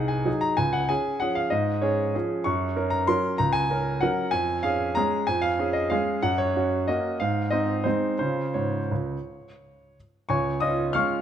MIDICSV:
0, 0, Header, 1, 2, 480
1, 0, Start_track
1, 0, Key_signature, -5, "major"
1, 0, Tempo, 312826
1, 895, Time_signature, 3, 2, 24, 8
1, 7127, Tempo, 319149
1, 11447, Tempo, 347625
1, 14807, Tempo, 327869
1, 16660, End_track
2, 0, Start_track
2, 0, Title_t, "Grand piano"
2, 0, Program_c, 0, 0
2, 0, Control_c, 0, 64, 127
2, 0, Note_on_c, 0, 36, 39
2, 0, Note_on_c, 0, 63, 30
2, 0, Note_on_c, 0, 68, 34
2, 0, Note_on_c, 0, 78, 58
2, 124, Note_on_c, 0, 80, 49
2, 361, Note_off_c, 0, 63, 0
2, 362, Note_off_c, 0, 68, 0
2, 389, Note_on_c, 0, 54, 29
2, 399, Note_on_c, 0, 63, 30
2, 410, Note_on_c, 0, 68, 31
2, 442, Control_c, 0, 64, 0
2, 456, Note_off_c, 0, 36, 0
2, 459, Note_off_c, 0, 78, 0
2, 627, Note_on_c, 0, 82, 64
2, 637, Note_off_c, 0, 80, 0
2, 831, Note_off_c, 0, 54, 0
2, 837, Note_off_c, 0, 63, 0
2, 843, Note_off_c, 0, 68, 0
2, 872, Note_on_c, 0, 80, 70
2, 879, Note_off_c, 0, 82, 0
2, 891, Note_on_c, 0, 37, 45
2, 1114, Note_on_c, 0, 78, 63
2, 1119, Note_off_c, 0, 80, 0
2, 1137, Control_c, 0, 64, 127
2, 1356, Note_off_c, 0, 37, 0
2, 1361, Note_on_c, 0, 80, 61
2, 1364, Note_off_c, 0, 78, 0
2, 1377, Note_on_c, 0, 61, 34
2, 1382, Note_on_c, 0, 68, 36
2, 1394, Control_c, 0, 64, 0
2, 1814, Note_off_c, 0, 61, 0
2, 1816, Note_off_c, 0, 68, 0
2, 1836, Note_on_c, 0, 78, 63
2, 1854, Note_off_c, 0, 80, 0
2, 1864, Note_on_c, 0, 53, 32
2, 1870, Note_on_c, 0, 61, 33
2, 1879, Note_on_c, 0, 68, 33
2, 2076, Note_on_c, 0, 77, 62
2, 2090, Note_off_c, 0, 78, 0
2, 2288, Note_off_c, 0, 53, 0
2, 2291, Note_off_c, 0, 61, 0
2, 2296, Note_off_c, 0, 68, 0
2, 2305, Note_on_c, 0, 75, 60
2, 2320, Note_off_c, 0, 77, 0
2, 2331, Note_on_c, 0, 44, 43
2, 2582, Control_c, 0, 64, 127
2, 2785, Note_on_c, 0, 73, 54
2, 2786, Note_off_c, 0, 44, 0
2, 2787, Note_off_c, 0, 75, 0
2, 2800, Note_on_c, 0, 61, 36
2, 2811, Note_on_c, 0, 68, 38
2, 3241, Note_off_c, 0, 61, 0
2, 3247, Note_off_c, 0, 68, 0
2, 3282, Note_off_c, 0, 73, 0
2, 3294, Note_on_c, 0, 53, 38
2, 3305, Note_on_c, 0, 68, 38
2, 3308, Note_on_c, 0, 61, 36
2, 3310, Control_c, 0, 64, 0
2, 3720, Note_off_c, 0, 53, 0
2, 3726, Note_off_c, 0, 68, 0
2, 3728, Note_off_c, 0, 61, 0
2, 3749, Note_on_c, 0, 85, 66
2, 3768, Note_on_c, 0, 42, 48
2, 4085, Control_c, 0, 64, 127
2, 4227, Note_off_c, 0, 42, 0
2, 4237, Note_on_c, 0, 61, 35
2, 4242, Note_on_c, 0, 70, 41
2, 4455, Note_on_c, 0, 82, 64
2, 4473, Note_off_c, 0, 85, 0
2, 4673, Note_off_c, 0, 61, 0
2, 4676, Note_off_c, 0, 70, 0
2, 4710, Note_off_c, 0, 82, 0
2, 4716, Note_on_c, 0, 84, 74
2, 4727, Note_on_c, 0, 54, 36
2, 4736, Note_on_c, 0, 70, 40
2, 4737, Control_c, 0, 64, 0
2, 4737, Note_on_c, 0, 61, 38
2, 5155, Note_off_c, 0, 54, 0
2, 5160, Note_off_c, 0, 61, 0
2, 5160, Note_off_c, 0, 70, 0
2, 5189, Note_on_c, 0, 82, 72
2, 5197, Note_off_c, 0, 84, 0
2, 5211, Note_on_c, 0, 37, 49
2, 5410, Note_on_c, 0, 80, 77
2, 5431, Note_off_c, 0, 82, 0
2, 5481, Control_c, 0, 64, 127
2, 5670, Note_off_c, 0, 37, 0
2, 5677, Note_on_c, 0, 61, 37
2, 5692, Note_on_c, 0, 70, 39
2, 6120, Note_off_c, 0, 61, 0
2, 6128, Note_off_c, 0, 70, 0
2, 6146, Note_on_c, 0, 78, 69
2, 6156, Note_off_c, 0, 80, 0
2, 6170, Note_on_c, 0, 61, 36
2, 6175, Note_on_c, 0, 54, 37
2, 6182, Control_c, 0, 64, 0
2, 6183, Note_on_c, 0, 70, 42
2, 6603, Note_off_c, 0, 61, 0
2, 6606, Note_off_c, 0, 54, 0
2, 6610, Note_off_c, 0, 70, 0
2, 6613, Note_on_c, 0, 80, 74
2, 6639, Note_off_c, 0, 78, 0
2, 6646, Note_on_c, 0, 41, 51
2, 6978, Control_c, 0, 64, 127
2, 7102, Note_on_c, 0, 77, 70
2, 7109, Note_off_c, 0, 80, 0
2, 7111, Note_off_c, 0, 41, 0
2, 7117, Note_on_c, 0, 61, 39
2, 7128, Note_on_c, 0, 68, 37
2, 7559, Note_off_c, 0, 61, 0
2, 7565, Note_off_c, 0, 68, 0
2, 7584, Note_on_c, 0, 82, 75
2, 7601, Note_off_c, 0, 77, 0
2, 7612, Note_on_c, 0, 56, 35
2, 7615, Note_on_c, 0, 61, 39
2, 7622, Note_on_c, 0, 68, 41
2, 7633, Control_c, 0, 64, 0
2, 8039, Note_off_c, 0, 56, 0
2, 8041, Note_off_c, 0, 61, 0
2, 8044, Note_off_c, 0, 68, 0
2, 8064, Note_on_c, 0, 80, 72
2, 8072, Note_off_c, 0, 82, 0
2, 8087, Note_on_c, 0, 41, 51
2, 8287, Note_on_c, 0, 77, 73
2, 8308, Note_off_c, 0, 80, 0
2, 8369, Control_c, 0, 64, 127
2, 8545, Note_off_c, 0, 41, 0
2, 8553, Note_on_c, 0, 61, 38
2, 8565, Note_on_c, 0, 68, 41
2, 8762, Note_on_c, 0, 75, 56
2, 8786, Note_off_c, 0, 77, 0
2, 8994, Note_off_c, 0, 61, 0
2, 9001, Note_off_c, 0, 68, 0
2, 9012, Note_on_c, 0, 77, 68
2, 9026, Note_off_c, 0, 75, 0
2, 9037, Note_on_c, 0, 56, 34
2, 9038, Note_on_c, 0, 61, 37
2, 9044, Note_on_c, 0, 68, 40
2, 9064, Control_c, 0, 64, 0
2, 9465, Note_off_c, 0, 56, 0
2, 9466, Note_off_c, 0, 61, 0
2, 9469, Note_off_c, 0, 68, 0
2, 9500, Note_off_c, 0, 77, 0
2, 9503, Note_on_c, 0, 78, 67
2, 9508, Note_on_c, 0, 42, 53
2, 9739, Note_on_c, 0, 73, 68
2, 9745, Note_off_c, 0, 78, 0
2, 9833, Control_c, 0, 64, 127
2, 9976, Note_off_c, 0, 42, 0
2, 10009, Note_on_c, 0, 61, 36
2, 10017, Note_on_c, 0, 66, 42
2, 10446, Note_off_c, 0, 61, 0
2, 10451, Note_off_c, 0, 66, 0
2, 10481, Note_off_c, 0, 73, 0
2, 10482, Note_on_c, 0, 75, 59
2, 10499, Note_on_c, 0, 58, 35
2, 10503, Note_on_c, 0, 66, 40
2, 10504, Control_c, 0, 64, 0
2, 10506, Note_on_c, 0, 61, 36
2, 10928, Note_off_c, 0, 58, 0
2, 10930, Note_off_c, 0, 66, 0
2, 10932, Note_off_c, 0, 61, 0
2, 10966, Note_on_c, 0, 77, 63
2, 10967, Note_off_c, 0, 75, 0
2, 10990, Note_on_c, 0, 44, 49
2, 11253, Control_c, 0, 64, 127
2, 11428, Note_on_c, 0, 75, 63
2, 11444, Note_off_c, 0, 44, 0
2, 11446, Note_off_c, 0, 77, 0
2, 11449, Note_on_c, 0, 60, 33
2, 11453, Note_on_c, 0, 63, 34
2, 11867, Note_off_c, 0, 60, 0
2, 11870, Note_off_c, 0, 63, 0
2, 11889, Note_on_c, 0, 72, 51
2, 11904, Note_off_c, 0, 75, 0
2, 11911, Note_on_c, 0, 56, 31
2, 11919, Note_on_c, 0, 60, 32
2, 11919, Note_on_c, 0, 63, 33
2, 11933, Control_c, 0, 64, 0
2, 12340, Note_off_c, 0, 56, 0
2, 12345, Note_off_c, 0, 60, 0
2, 12345, Note_off_c, 0, 63, 0
2, 12356, Note_off_c, 0, 72, 0
2, 12377, Note_on_c, 0, 72, 56
2, 12393, Note_on_c, 0, 61, 30
2, 12396, Note_on_c, 0, 65, 30
2, 12404, Note_on_c, 0, 49, 38
2, 12649, Control_c, 0, 64, 127
2, 12740, Note_off_c, 0, 49, 0
2, 12782, Note_off_c, 0, 61, 0
2, 12784, Note_off_c, 0, 65, 0
2, 12861, Note_on_c, 0, 73, 44
2, 12871, Note_off_c, 0, 72, 0
2, 12877, Note_on_c, 0, 44, 34
2, 13224, Note_off_c, 0, 44, 0
2, 13380, Note_on_c, 0, 37, 35
2, 13385, Control_c, 0, 64, 0
2, 13715, Note_off_c, 0, 37, 0
2, 14141, Control_c, 0, 64, 127
2, 14801, Note_off_c, 0, 73, 0
2, 14831, Control_c, 0, 64, 0
2, 15299, Note_on_c, 0, 85, 60
2, 15313, Note_on_c, 0, 80, 45
2, 15315, Note_on_c, 0, 37, 41
2, 15320, Note_on_c, 0, 73, 48
2, 15582, Control_c, 0, 64, 127
2, 15750, Note_off_c, 0, 80, 0
2, 15753, Note_off_c, 0, 73, 0
2, 15764, Note_on_c, 0, 87, 65
2, 15769, Note_off_c, 0, 37, 0
2, 15775, Note_off_c, 0, 85, 0
2, 15782, Note_on_c, 0, 75, 49
2, 15783, Note_on_c, 0, 65, 39
2, 15785, Note_on_c, 0, 61, 37
2, 16213, Note_off_c, 0, 65, 0
2, 16215, Note_off_c, 0, 61, 0
2, 16227, Note_off_c, 0, 75, 0
2, 16243, Note_on_c, 0, 89, 65
2, 16252, Note_off_c, 0, 87, 0
2, 16259, Note_on_c, 0, 85, 49
2, 16264, Note_on_c, 0, 77, 49
2, 16267, Note_on_c, 0, 61, 32
2, 16269, Note_on_c, 0, 56, 32
2, 16274, Note_on_c, 0, 65, 35
2, 16275, Control_c, 0, 64, 0
2, 16660, Note_off_c, 0, 56, 0
2, 16660, Note_off_c, 0, 61, 0
2, 16660, Note_off_c, 0, 65, 0
2, 16660, Note_off_c, 0, 77, 0
2, 16660, Note_off_c, 0, 85, 0
2, 16660, Note_off_c, 0, 89, 0
2, 16660, End_track
0, 0, End_of_file